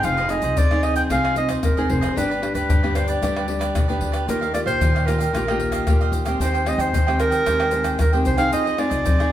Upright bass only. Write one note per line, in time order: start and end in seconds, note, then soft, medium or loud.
0.04 0.38 F1 medium
0.43 0.55 C2 medium
0.57 1.02 F2 medium
1.10 1.55 C2 medium
1.64 1.86 F1 medium
1.90 2.12 F1 loud
2.17 2.51 G1 medium
2.55 2.67 D2 medium
2.70 3.15 G2 medium
3.22 3.67 D2 medium
3.75 3.99 B1 medium
4.02 4.26 D2 medium
4.29 4.62 D#2 medium
4.66 4.78 A#1 medium
4.81 5.26 D#3 medium
5.33 5.79 A#1 medium
5.87 6.10 D#2 medium
6.12 6.35 D#2 medium
6.40 6.74 D#2 medium
6.78 6.90 D#2 medium
6.93 7.38 D#3 medium
7.47 7.92 D#2 medium
8.00 8.22 D#2 medium
8.26 8.49 C2 loud
8.53 8.87 F2 medium
8.91 9.03 C2 medium
9.06 9.32 F3 loud